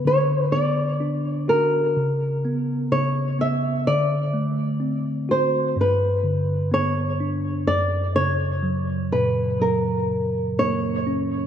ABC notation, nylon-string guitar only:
X:1
M:4/4
L:1/8
Q:1/4=63
K:F#phr
V:1 name="Nylon-string guitar"
c d2 ^A3 c e | d3 =c B2 ^c2 | d c2 B ^A2 c2 |]